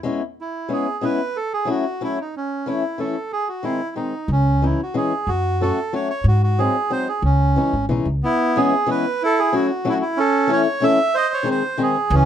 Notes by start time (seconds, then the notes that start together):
0.03 G#3 B3 C#4 E4
0.41 E4
0.69 G#3 B3 C#4 E4
0.73 G#4
1.01 G#3 B3 C#4 E4 B4
1.36 A4
1.53 G#4
1.65 F#3 A3 C#4 E4
1.70 F#4
2.01 F#3 A3 C#4 E4
2.21 D#4
2.37 C#4
2.66 E3 A3 C#4 E4
2.98 E3 A3 C#4 E4 A4
3.33 G#4
3.49 F#4
3.63 D#3 G#3 C4 D#4 E4
3.96 D#3 G#3 C4 D#4
4.28 C#2 C#4
4.62 E3 G#3 C#4 D#4 E4
4.83 F#4
4.94 E3 G#3 C#4 D#4 G#4
5.27 F#2 F#4
5.61 F#3 A3 C#4 F#4 A4
5.93 F#3 A3 C#4 F#4 C#5
6.10 C#5
6.24 G#2
6.28 F#4
6.43 F#4
6.59 F#3 G#3 C4 D#4 G#4
6.90 F#3 G#3 C4 D#4 C5
7.08 G#4
7.22 C#2 C#4
7.56 E3 G#3 C#4 D#4
7.73 G#1
7.89 B1 E3 G#3 C#4 D#4
8.05 C#2
8.23 B3 E4
8.56 E3 G#3 B3 C#4 E4 G#4
8.86 E3 G#3 B3 C#4 E4
8.91 B4
9.23 E4 A4
9.39 G#4
9.52 F#3 A3 C#4 E4 F#4
9.85 F#3 A3 C#4 E4 F#4
9.89 E4 F#4
10.02 E4
10.17 C#4 A4
10.47 E3 A3 C#4 E4 A4
10.53 C#5
10.80 E3 A3 C#4 E4 A4 E5
11.15 C5 D#5
11.34 C#5
11.43 D#3 G#3 C4 D#4 G#4
11.51 C5
11.78 D#3 G#3 C4 D#4 G#4
11.83 G#4
12.10 C#2 E3
12.15 C#4